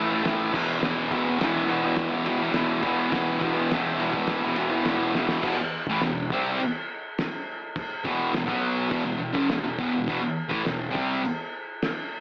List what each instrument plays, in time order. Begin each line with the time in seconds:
Already playing: distorted electric guitar A2
0.00 distorted electric guitar E3 A3
0.11 distorted electric guitar A3
0.16 distorted electric guitar E3
0.24 distorted electric guitar A2 E3, snare, ride
0.28 distorted electric guitar A3
0.52 distorted electric guitar E2 B2, kick, crash
0.57 distorted electric guitar E3
0.80 distorted electric guitar E2 B2, snare
0.84 distorted electric guitar E3
1.11 distorted electric guitar E2 B2, kick, ride
1.16 distorted electric guitar E3
1.24 distorted electric guitar E3
1.29 distorted electric guitar B2
1.39 distorted electric guitar E2 B2, snare, ride
1.44 distorted electric guitar E3
1.66 distorted electric guitar E2 B2, ride
1.71 distorted electric guitar E3
1.83 distorted electric guitar B2 E3
1.96 kick, snare, ride
2.11 distorted electric guitar E3
2.15 distorted electric guitar B2
2.25 distorted electric guitar E2 B2, ride
2.29 distorted electric guitar E3
2.38 distorted electric guitar E3
2.43 distorted electric guitar B2
2.52 distorted electric guitar E2 B2, snare, ride
2.57 distorted electric guitar E3
2.82 distorted electric guitar E2 B2, kick, ride
2.87 distorted electric guitar E3
3.10 distorted electric guitar E2 B2, kick, snare, ride
3.16 distorted electric guitar E3
3.39 distorted electric guitar E2 B2, kick, ride
3.45 distorted electric guitar E3
3.54 distorted electric guitar E3
3.58 distorted electric guitar B2
3.70 distorted electric guitar E2 B2, snare, ride
3.74 distorted electric guitar E3
3.97 distorted electric guitar E2 B2, ride
4.03 distorted electric guitar E3
4.12 distorted electric guitar E3, kick
4.17 distorted electric guitar B2
4.27 kick, snare, ride
4.41 distorted electric guitar E3
4.46 distorted electric guitar B2
4.55 distorted electric guitar E2 B2, ride
4.60 distorted electric guitar E3
4.70 distorted electric guitar E3
4.75 distorted electric guitar B2
4.84 distorted electric guitar E2 B2, snare, ride
4.88 distorted electric guitar E3
5.14 distorted electric guitar E2 B2 E3, snare
5.29 snare
5.43 distorted electric guitar E2 B2, kick, crash
5.58 muted distorted electric guitar stroke
5.87 distorted electric guitar A2 E3, kick
6.01 distorted electric guitar E2 B2, snare, crash
6.30 distorted electric guitar C3 G3 C4, kick
6.60 crash
7.18 snare, crash
7.76 kick, crash
8.04 distorted electric guitar E2 B2 E3, kick
8.34 distorted electric guitar E2 B2, snare, crash
8.46 distorted electric guitar B2 F#3 B3, kick
8.89 distorted electric guitar E2 B2, kick, crash
9.06 distorted electric guitar E2 B2
9.18 distorted electric guitar E2 B2
9.33 distorted electric guitar F#2 C#3, kick
9.49 distorted electric guitar E2 B2, snare, crash
9.64 distorted electric guitar E2 B2
9.79 distorted electric guitar E2 B2, kick
9.93 distorted electric guitar E2 B2
10.08 distorted electric guitar E2 B2, kick, crash
10.22 muted distorted electric guitar stroke
10.48 distorted electric guitar A2 E3, kick
10.64 distorted electric guitar E2 B2, snare, crash
10.90 distorted electric guitar C3 G3 C4
10.95 kick
11.25 crash
11.82 snare, crash